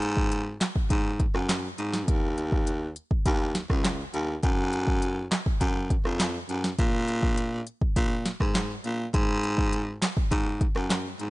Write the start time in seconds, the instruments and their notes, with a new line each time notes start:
Already playing: baritone saxophone G#2
0.02 closed hi-hat
0.17 kick
0.32 closed hi-hat
0.61 snare, clap, closed hi-hat
0.76 kick
0.90 baritone saxophone G#2, kick, closed hi-hat
1.20 kick, closed hi-hat
1.35 baritone saxophone F#2, cross-stick
1.49 snare, clap, closed hi-hat
1.78 baritone saxophone G#2, closed hi-hat
1.93 snare
2.08 baritone saxophone D#2, kick, closed hi-hat
2.38 closed hi-hat
2.52 kick
2.67 closed hi-hat
2.96 closed hi-hat
3.11 kick
3.26 baritone saxophone D#2, kick, closed hi-hat
3.55 snare, closed hi-hat
3.70 baritone saxophone C#2, kick, cross-stick
3.84 snare, clap, closed hi-hat
4.14 baritone saxophone D#2, closed hi-hat
4.43 baritone saxophone F#2, kick, closed hi-hat
4.73 closed hi-hat
4.87 kick
5.02 closed hi-hat
5.31 snare, clap, closed hi-hat
5.46 kick
5.61 baritone saxophone F#2, kick, closed hi-hat
5.90 kick, closed hi-hat
6.05 baritone saxophone F2, cross-stick
6.20 snare, clap, closed hi-hat
6.49 baritone saxophone F#2, closed hi-hat
6.64 snare
6.79 baritone saxophone A#2, kick, closed hi-hat
7.08 closed hi-hat
7.23 kick
7.37 closed hi-hat
7.67 closed hi-hat
7.81 kick
7.96 baritone saxophone A#2, kick, closed hi-hat
8.26 snare, closed hi-hat
8.40 baritone saxophone G#2, kick, cross-stick
8.55 snare, clap, closed hi-hat
8.84 baritone saxophone A#2, closed hi-hat
9.14 baritone saxophone G#2, kick, closed hi-hat
9.44 closed hi-hat
9.58 kick
9.73 closed hi-hat
10.02 snare, clap, closed hi-hat
10.17 kick
10.32 baritone saxophone G#2, kick, closed hi-hat
10.61 kick, closed hi-hat
10.76 baritone saxophone F#2, cross-stick
10.90 snare, clap, closed hi-hat
11.19 baritone saxophone G#2, closed hi-hat